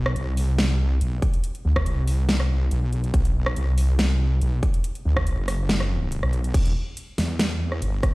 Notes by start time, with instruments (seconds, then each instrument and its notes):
Already playing: wobble bass B1
0.06 cross-stick
0.16 wobble bass C2, closed hi-hat
0.37 open hi-hat
0.59 snare, closed hi-hat
1.01 wobble bass B1, closed hi-hat
1.22 kick, closed hi-hat
1.34 closed hi-hat
1.44 closed hi-hat
1.55 closed hi-hat
1.65 wobble bass D2
1.76 kick, cross-stick
1.86 wobble bass C2, closed hi-hat
2.07 open hi-hat
2.29 snare, closed hi-hat
2.40 cross-stick
2.71 wobble bass B1, closed hi-hat
2.93 closed hi-hat
3.04 closed hi-hat
3.14 wobble bass B1, kick, closed hi-hat
3.25 closed hi-hat
3.46 cross-stick
3.56 wobble bass C2, closed hi-hat
3.78 open hi-hat
3.99 snare, closed hi-hat
4.41 wobble bass B1, closed hi-hat
4.63 kick, closed hi-hat
4.74 closed hi-hat
4.84 closed hi-hat
4.95 closed hi-hat
5.05 wobble bass D2
5.17 kick, cross-stick
5.27 wobble bass B1, closed hi-hat
5.38 wobble bass F#1
5.48 cross-stick, open hi-hat
5.69 snare, closed hi-hat
5.80 cross-stick
6.12 closed hi-hat
6.23 wobble bass B1, cross-stick
6.33 closed hi-hat
6.44 closed hi-hat
6.54 wobble bass E1, kick, closed hi-hat, crash, ride
6.66 closed hi-hat
6.97 closed hi-hat, ride
7.18 wobble bass E2, snare, open hi-hat
7.39 snare, closed hi-hat, ride
7.72 cross-stick
7.82 wobble bass G1, closed hi-hat, ride
8.03 kick, cross-stick, closed hi-hat